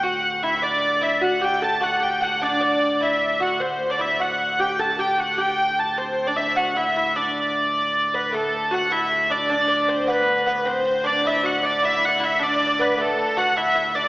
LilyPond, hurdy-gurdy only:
\new Staff \with { instrumentName = "Hurdy-gurdy" } { \time 6/8 \key d \mixolydian \tempo 4. = 102 fis''4 e''8 d''4 e''8 | fis''8 g''8 a''8 fis''8 g''8 fis''8 | d''8 d''4 e''4 fis''8 | c''8. d''16 e''8 fis''4 g''8 |
a''8 g''8 fis''8 g''4 a''8 | c''8. d''16 e''8 fis''8 e''4 | d''2~ d''8 b'8 | a'4 fis''8 e''4 d''8 |
d''4 c''8 b'4 b'8 | c''4 d''8 e''8 fis''8 d''8 | e''8 fis''8 e''8 d''4 b'8 | a'4 fis''8 e''4 d''8 | }